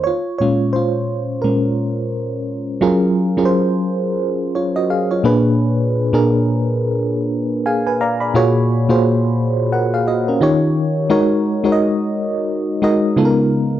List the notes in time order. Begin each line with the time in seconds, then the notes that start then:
0.04 F4 C#5
0.38 A#2 G#3 C#4 F4 C#5
0.73 F4 C5
1.42 A#2 G#3 C#4 A#4
2.81 F#3 C#4 F4 G#4 A#4
3.37 F#3 C#4 F4 G#4 A#4
3.45 C5
4.55 F4 C#5
4.76 F#4 D#5
4.90 G#4 F5
5.11 F4 C#5
5.23 A#2 A#3 D4 G#4 B4
6.13 A#2 A#3 D4 G#4 A#4
7.66 G#4 F5 G#5
7.87 B4 G#5
8.01 D5 F5 A#5
8.20 D5 B5
8.34 A#2 A#3 F4 F#4 G#4 C#5
8.89 A#2 A#3 F4 F#4 G#4 C5
9.72 A#4 F#5
9.94 G#4 F5
10.08 F#4 D#5
10.28 C#4 A#4
10.41 D#3 D#4 F4 G4 C#5
11.10 G#3 D#4 F#4 A#4 C#5
11.64 G#3 D#4 F#4 A#4 C#5
11.72 D#5
12.82 G#3 D#4 F#4 A#4 D#5
13.16 C#3 G#3 B3 D#4 F4 A4
13.25 A#4